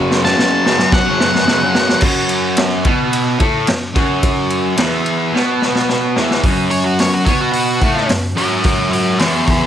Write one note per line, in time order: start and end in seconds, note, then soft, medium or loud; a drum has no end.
0.00 0.36 F#2 loud
0.00 0.26 C#3 loud
0.00 0.21 F#3 loud
0.11 snare medium
0.23 0.40 F#3 medium
0.23 0.91 A5 loud
0.23 snare medium
0.27 0.38 C#3 medium
0.37 0.64 F#2 medium
0.37 0.67 C#3 loud
0.37 snare medium
0.41 0.69 F#3 loud
0.65 1.06 F#2 medium
0.65 0.79 C#3 medium
0.65 snare medium
0.70 0.79 F#3 medium
0.79 muted distorted electric guitar stroke medium
0.79 snare medium
0.92 2.00 F#5 loud
0.92 kick loud
0.92 snare medium
1.05 1.22 F#3 medium
1.10 1.19 C#3 medium
1.18 1.45 F#2 medium
1.18 1.33 C#3 medium
1.18 snare loud
1.23 1.32 F#3 medium
1.34 muted distorted electric guitar stroke medium
1.34 snare medium
1.46 1.72 F#2 loud
1.46 1.64 C#3 medium
1.46 snare loud
1.51 1.58 F#3 medium
1.59 1.77 F#3 medium
1.65 1.75 C#3 medium
1.74 2.00 F#2 medium
1.74 2.01 C#3 medium
1.74 snare loud
1.78 2.02 F#3 medium
1.89 snare medium
2.01 2.84 F#2 medium
2.01 2.85 F#3 medium
2.01 kick loud
2.01 crash loud
2.29 ride medium
2.57 snare loud
2.57 ride loud
2.84 3.39 B2 loud
2.84 3.39 B3 loud
2.84 kick loud
2.84 ride medium
3.13 ride loud
3.39 3.66 A2 medium
3.39 3.67 A3 loud
3.39 kick loud
3.39 ride medium
3.67 3.90 F#2 medium
3.67 snare loud
3.67 ride medium
3.94 4.77 F#2 medium
3.94 4.77 F#3 loud
3.94 kick loud
3.94 snare soft
3.94 ride medium
4.23 kick loud
4.23 ride loud
4.50 ride medium
4.77 5.32 E2 medium
4.77 5.33 E3 loud
4.77 snare loud
4.77 ride loud
5.06 ride medium
5.32 6.15 B2 medium
5.32 6.16 B3 loud
5.32 snare medium
5.62 snare medium
5.75 snare medium
5.89 snare medium
6.16 6.43 E2 medium
6.16 6.44 E3 medium
6.16 snare medium
6.31 snare medium
6.44 7.26 F#2 medium
6.44 7.27 F#3 medium
6.44 kick loud
6.44 open hi-hat medium
6.71 6.85 C#5 medium
6.71 open hi-hat medium
6.84 6.98 F#4 medium
6.99 7.13 C#5 medium
6.99 snare loud
6.99 open hi-hat medium
7.14 7.27 F#4 medium
7.25 7.81 B2 medium
7.25 7.81 B3 loud
7.25 7.39 C#5 medium
7.25 kick medium
7.25 open hi-hat medium
7.41 7.51 F#4 medium
7.53 8.07 F#4 loud
7.53 open hi-hat medium
7.81 8.08 A2 medium
7.81 8.09 A3 medium
7.81 kick medium
7.81 open hi-hat medium
7.97 snare soft
8.08 8.31 F#2 medium
8.08 snare loud
8.08 open hi-hat medium
8.36 9.19 F#2 medium
8.36 9.20 F#3 loud
8.36 8.65 C#5 medium
8.36 8.64 E5 medium
8.36 open hi-hat medium
8.64 8.91 C#5 medium
8.64 8.91 E5 medium
8.64 kick loud
8.64 open hi-hat medium
8.92 9.18 C#5 medium
8.92 9.19 E5 medium
8.92 open hi-hat medium
9.19 9.66 E2 medium
9.19 9.66 E3 loud
9.19 9.45 A#4 medium
9.19 9.47 C#5 loud
9.19 snare loud
9.19 open hi-hat medium
9.47 9.66 A#4 medium
9.47 9.66 C#5 medium
9.47 kick medium
9.47 open hi-hat medium